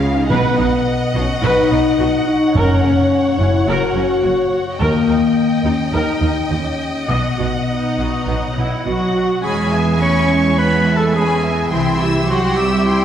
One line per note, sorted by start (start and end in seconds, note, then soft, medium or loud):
0.00 0.26 C#2 medium
0.00 0.26 C#3 medium
0.00 0.33 C#3 medium
0.00 0.33 G#3 soft
0.00 0.33 C#4 soft
0.00 0.32 F4 soft
0.00 0.27 G#4 soft
0.00 0.27 F5 medium
0.00 0.30 F5 soft
0.00 0.33 F5 soft
0.15 0.29 D#4 medium
0.30 0.40 B1 medium
0.30 1.11 B2 medium
0.30 0.38 B2 medium
0.30 2.57 B2 medium
0.30 1.13 B3 medium
0.30 0.57 B4 medium
0.30 2.51 D#5 medium
0.30 4.76 F#5 soft
0.58 0.68 B1 soft
0.58 0.66 B2 soft
0.58 1.69 B3 soft
0.58 0.66 D#4 soft
0.87 1.97 D#5 soft
1.15 1.24 B1 soft
1.15 1.23 B2 medium
1.15 1.28 C#4 medium
1.15 1.23 D#4 soft
1.15 2.26 F#4 soft
1.42 1.52 B1 medium
1.42 1.50 B2 medium
1.42 4.82 F#3 soft
1.42 2.25 D#4 medium
1.42 1.69 B4 medium
1.71 1.79 B1 soft
1.71 1.79 B2 soft
1.71 2.57 B3 soft
1.71 1.79 D#4 medium
1.98 2.08 B1 soft
1.98 2.07 B2 soft
1.98 2.08 F#4 medium
1.98 2.57 D#5 soft
2.27 2.55 D#4 medium
2.27 3.38 F#4 soft
2.54 2.64 F#1 medium
2.54 2.62 F#2 medium
2.54 3.35 F#2 medium
2.54 4.82 F#2 medium
2.54 3.39 C#4 medium
2.54 2.81 A#4 medium
2.54 4.75 C#5 medium
2.82 2.92 F#1 soft
2.82 2.90 F#2 soft
2.82 3.94 A#3 soft
2.82 2.92 C#4 soft
3.11 4.22 C#5 soft
3.38 3.47 F#1 soft
3.38 3.46 F#2 soft
3.38 3.49 C#4 soft
3.38 3.67 E4 medium
3.38 4.50 F#4 soft
3.67 3.76 F#1 medium
3.67 3.75 F#2 medium
3.67 4.82 C#3 soft
3.67 4.51 F#4 medium
3.67 3.94 A#4 medium
3.95 4.04 F#1 soft
3.95 4.03 F#2 soft
3.95 5.06 A#3 soft
3.95 4.04 C#4 soft
4.23 4.32 F#1 soft
4.23 4.32 F#2 soft
4.23 4.31 F#4 soft
4.23 4.82 C#5 soft
4.52 4.82 F#4 soft
4.52 4.65 F#4 medium
4.79 4.88 D#2 medium
4.79 7.11 D#3 soft
4.79 5.63 A#3 medium
4.79 5.06 A#4 medium
4.79 9.24 D#5 soft
4.79 7.05 G5 soft
5.08 5.16 D#2 soft
5.08 5.17 D#2 soft
5.08 6.20 A#3 soft
5.08 5.18 D#4 soft
5.36 6.49 D#5 soft
5.64 5.73 D#2 soft
5.64 5.92 C#4 medium
5.64 5.74 D#4 soft
5.64 6.78 G4 soft
5.93 6.01 D#2 medium
5.93 6.02 D#2 soft
5.93 6.51 D#4 medium
5.93 7.37 D#4 soft
5.93 6.20 A#4 soft
6.21 6.29 D#2 soft
6.21 6.30 D#2 soft
6.21 7.11 A#3 soft
6.21 6.29 D#4 soft
6.50 6.59 D#2 soft
6.50 7.10 C#4 medium
6.50 6.59 G4 soft
6.50 7.68 D#5 soft
6.79 7.11 G4 soft
7.08 7.18 B1 soft
7.08 9.46 B2 soft
7.08 7.17 B2 soft
7.08 8.82 B3 medium
7.08 7.37 D#5 soft
7.08 8.83 F#5 soft
7.38 7.48 B1 soft
7.38 7.47 B2 soft
7.38 8.55 D#4 soft
7.38 7.46 F#4 soft
7.68 8.52 D#4 soft
7.68 8.85 D#5 soft
7.98 8.07 B1 soft
7.98 8.06 B2 soft
7.98 9.15 F#4 soft
8.27 8.35 B1 soft
8.27 8.36 B2 soft
8.27 9.47 F#3 soft
8.56 8.66 B1 soft
8.56 8.65 B2 soft
8.56 9.47 D#4 soft
8.56 8.86 E4 soft
8.85 8.94 B1 soft
8.85 8.94 B2 soft
8.85 9.41 F#3 soft
8.85 9.46 F#4 soft
8.85 9.44 F#4 soft
8.85 9.47 D#5 soft
8.85 9.40 F#5 soft
9.16 9.47 F#4 soft
9.44 11.69 E2 soft
9.44 11.75 E3 soft
9.44 10.01 G#3 medium
9.44 9.71 C#4 soft
9.44 10.01 G#4 medium
9.44 9.71 G#5 soft
9.44 10.01 G#5 soft
9.44 9.71 B5 soft
9.73 10.02 B3 soft
9.73 13.05 E4 soft
9.73 10.02 E5 soft
9.73 10.00 G#5 soft
10.01 10.30 A3 soft
10.01 10.58 C#4 medium
10.01 11.15 B4 soft
10.01 10.60 C#5 medium
10.01 10.28 G#5 soft
10.01 10.30 B5 soft
10.01 10.57 C#6 medium
10.29 11.14 G#3 soft
10.29 10.58 E5 soft
10.29 10.57 G#5 soft
10.58 11.75 B3 soft
10.58 10.96 B3 soft
10.58 10.99 B4 medium
10.58 10.85 G#5 soft
10.58 10.85 B5 soft
10.58 10.96 B5 soft
10.86 11.15 E5 soft
10.86 11.13 G#5 soft
10.95 11.16 A3 soft
10.95 11.15 A4 medium
10.95 11.03 A5 soft
11.14 11.73 G#3 soft
11.14 11.44 C#4 soft
11.14 11.71 G#4 medium
11.14 11.75 B4 soft
11.14 11.42 G#5 soft
11.14 11.71 G#5 medium
11.14 11.44 B5 soft
11.43 11.73 B3 soft
11.43 11.72 E5 soft
11.43 11.72 G#5 soft
11.71 13.05 C2 soft
11.71 13.05 C3 soft
11.71 12.28 E3 medium
11.71 12.01 C4 soft
11.71 12.30 E4 medium
11.71 12.29 E5 soft
11.71 11.99 G5 soft
11.71 11.98 C6 soft
12.00 13.05 C4 soft
12.00 12.86 G4 medium
12.00 12.29 E5 soft
12.00 12.29 E6 soft
12.28 12.57 F#3 medium
12.28 12.58 F#4 medium
12.28 12.57 F#5 medium
12.28 12.57 G5 soft
12.28 13.05 G5 soft
12.28 12.57 C6 soft
12.56 13.05 G3 medium
12.56 13.05 G4 medium
12.56 13.05 G4 soft
12.56 12.86 E5 soft
12.56 13.05 G5 soft
12.56 12.86 E6 soft
12.85 13.05 G3 soft
12.85 13.05 E4 medium
12.85 13.05 G5 soft
12.85 13.05 C6 soft